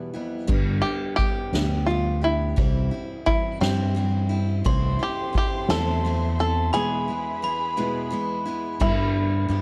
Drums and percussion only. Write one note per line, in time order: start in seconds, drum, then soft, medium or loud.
0.49 kick loud
0.49 crash medium
0.84 ride medium
1.19 kick medium
1.19 ride medium
1.54 snare medium
1.54 ride medium
1.89 ride medium
2.23 ride medium
2.58 kick loud
2.58 ride medium
2.93 ride medium
3.27 kick medium
3.27 ride medium
3.62 snare medium
3.62 ride medium
3.97 ride medium
4.31 ride medium
4.66 kick loud
4.66 ride medium
5.00 ride medium
5.35 kick medium
5.35 ride medium
5.69 snare loud
5.69 ride medium
6.03 ride medium
6.39 ride medium
8.81 kick loud
8.81 crash loud
9.16 ride medium
9.51 ride medium